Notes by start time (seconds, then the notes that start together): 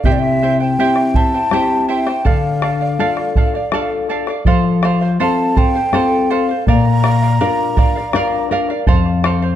0.04 C3 E4 G4 C5 E5 G5, bombo low
0.12 D5
0.19 E5, bombo rim
0.43 E4 C5 E5 G5
0.60 E4 C5 G5
0.79 C4 E4 G4 C5 E5 G5
0.96 bombo rim
1.14 E4 C5 E5 G5 A5, bombo low
1.34 E4 C5 G5
1.51 C4 E4 G4 C5 E5 G5, bombo rim
1.89 E4 C5 E5 G5
2.06 E4 C5 G5, bombo rim
2.25 D3 A4 D5 F5, bombo rim, bombo low
2.62 A4 D5 F5, bombo rim
2.81 D5 F5, bombo rim
2.99 D4 F4 A4 D5 F5, bombo rim
3.17 bombo rim
3.36 A4 D5 F5, bombo low
3.54 D5 F5, bombo rim
3.72 D4 F4 A4 D5 F5, bombo rim
4.09 A4 D5 F5, bombo rim
4.27 D5 F5, bombo rim
4.45 F3 A4 C5 F5, bombo low
4.64 bombo rim
4.83 A4 C5 F5, bombo rim
5.01 C5 F5
5.20 C4 F4 A4 C5 F5 A5
5.56 A4 C5 F5 G5, bombo low
5.75 C5 F5
5.92 C4 F4 A4 C5 F5, bombo rim
6.30 A4 C5 F5, bombo rim
6.49 C5 F5, bombo rim
6.67 A#2 A#4 D5 F5 A#5, bombo low
6.85 bombo rim
7.04 A#4 D5 F5, bombo rim
7.23 D5 F5
7.41 D4 F4 A#4 D5 F5
7.77 A#4 D5 F5, bombo low
7.95 D5 F5
8.13 D4 F4 A#4 D5 F5, bombo rim
8.50 A#4 D5 F5, bombo rim
8.69 D5 F5, bombo rim
8.87 F2 A4 C5 F5, bombo low
9.06 bombo rim
9.24 A4 C5 F5, bombo rim
9.42 C5 F5